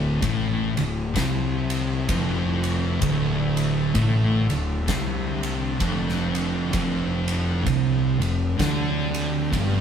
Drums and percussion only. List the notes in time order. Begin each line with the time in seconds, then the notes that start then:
0.22 kick, ride
0.77 ride
1.16 kick, snare, ride
1.70 ride
2.09 kick, ride
2.64 ride
3.02 kick, ride
3.57 ride
3.95 kick, ride
4.50 ride
4.88 kick, snare, ride
5.43 ride
5.80 kick, ride
6.09 snare
6.35 ride
6.73 kick, ride
7.28 ride
7.67 kick, ride
8.22 ride
8.59 kick, snare, ride
9.14 ride
9.53 kick, ride